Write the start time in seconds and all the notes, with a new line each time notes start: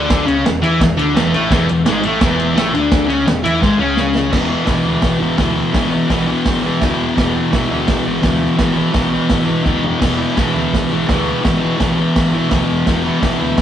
Already playing: D2 D3 D4
0.10 kick, snare, ride
0.26 C#2 C#3 C#4, ride
0.44 E1 E2, snare, ride
0.61 E2 E3 E4, ride
0.80 E1 E2, kick, snare, ride
0.97 D2 D3 D4, ride
1.14 E1 E2 E3, snare, ride
1.33 A1 A2 A3, ride
1.50 E1 E2 E3, kick, snare, ride
1.67 E1 E2, ride
1.86 G#1 G#2 G#3, snare, ride
2.03 A1 A2 A3, ride
2.20 E1 E2 E3, kick, snare, ride
2.40 ride
2.54 A1 A2 A3, snare, ride
2.73 D2 D3 D4, ride
2.92 kick, snare, ride
3.07 C#2 C#3 C#4, ride
3.26 E1 E2, snare, ride
3.44 E2 E3 E4, ride
3.61 G#1 G#2 G#3, kick, snare
3.78 C#2 C#3 C#4
3.97 snare
4.15 snare
4.30 E1 E2 B2, kick, snare, crash
4.34 E3
4.49 E3
4.53 B2
4.65 B1 E2 B2, kick, snare, open hi-hat
4.69 E3
4.84 D2 B2 E3
5.02 B1, kick, snare, open hi-hat
5.18 G#1 E3
5.23 B2
5.38 D2 E2 B2 E3, kick, snare, open hi-hat
5.72 G#1 E2 B2, kick, snare, open hi-hat
5.76 E3
5.91 E3
5.95 B2
6.08 B1 E2 B2, kick, snare, open hi-hat
6.12 E3
6.27 B2 E3
6.45 G#1, kick, snare, open hi-hat
6.62 E3
6.66 B2
6.81 D2 E2 B2, kick, snare, open hi-hat
6.85 E3
6.99 E1
7.15 E1 E2 B2, kick, snare, open hi-hat
7.20 E3
7.34 B2 E3
7.50 B1 E2 B2, kick, snare, open hi-hat
7.55 E3
7.67 D2 E3
7.71 B2
7.88 B1, kick, snare, open hi-hat
8.03 G#1 B2 E3
8.21 D2 E2 B2, kick, snare, open hi-hat
8.25 E3
8.57 G#1 E2 B2 E3, kick, snare, open hi-hat
8.73 E3
8.78 B2
8.92 B1 E2 B2 E3, kick, snare, open hi-hat
9.10 E3
9.15 B2
9.29 G#1, kick, snare, open hi-hat
9.45 E3
9.50 B2
9.63 D2 E2 B2, kick, snare
9.67 E3
9.83 E1, floor tom
9.99 E1 E2 B2 E3, kick, snare, open hi-hat, crash
10.18 E3
10.22 B2
10.35 B1 E2 B2, kick, snare, open hi-hat
10.39 E3
10.54 D2 E3
10.59 B2
10.73 B1, kick, snare, open hi-hat
10.91 G#1 E3
10.95 B2
11.07 D2 E2 B2, kick, snare, open hi-hat
11.11 E3
11.42 G#1 E2 B2, kick, snare, open hi-hat
11.46 E3
11.60 B2 E3
11.77 B1 E2 B2 E3, kick, snare, open hi-hat
11.97 B2 E3
12.16 G#1, kick, snare, open hi-hat
12.34 B2 E3
12.49 D2 E2 B2 E3, kick, snare, open hi-hat
12.70 E1
12.85 E1 E2 B2 E3, kick, snare, open hi-hat
13.03 E3
13.07 B2
13.20 B1 E2 B2, kick, snare, open hi-hat
13.24 E3
13.38 D2 E3
13.42 B2
13.58 B1, kick, snare, open hi-hat